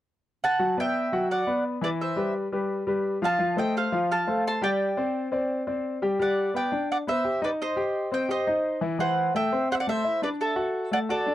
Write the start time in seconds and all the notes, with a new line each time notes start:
0.44 F#5 A5
0.59 F#3 F#4 F#5
0.77 B3 B4 D5 E5 G5
1.12 F#3 F#4 F#5
1.31 D5 F#5
1.47 B3 B4 D5
1.81 E3 E4 B4 D5 E5
2.01 C5 E5
2.16 G3 G4 B4
2.52 G3 G4 B4
2.87 G3 G4 B4
3.22 F3 F4 F5 A5
3.39 F3 F4 F5
3.56 A3 A4 C5 D#5 G5
3.77 C5 F5
3.92 F3 F4 F5
4.11 F5 A5
4.27 A3 A4 C5
4.47 A5 C6
4.62 G3 G4 D5 G5
4.97 C4 C5 D5
5.32 C4 C5 D5
5.67 C4 C5 D5
6.02 G3 G4 G5
6.19 G3 G4 D5 F#5
6.54 B3 B4 D5 G5
6.72 D4 D5
6.92 D5 F#5
7.07 B3 B4 C5 E5
7.24 G4 G5
7.42 D#4 B4 D5 D#5
7.62 C5 D#5
7.76 G4 G5
8.12 C4 C5 D#5 G5
8.29 G4 C5 D#5 G5
8.47 D#4 D#5
8.81 E3 E4
8.99 E3 E4 C5 F#5
9.35 A3 A4 E5 G5
9.52 C4 C5
9.72 C5 E5 F#5
9.80 D5 F#5
9.87 A3 A4 C5 E5
10.04 E4 E5
10.22 D4 B4 D5
10.41 A4 E5
10.56 F#4 F#5
10.91 A3 A4 D5 F#5
11.09 F#4 A4 D5 F#5
11.26 D4 D5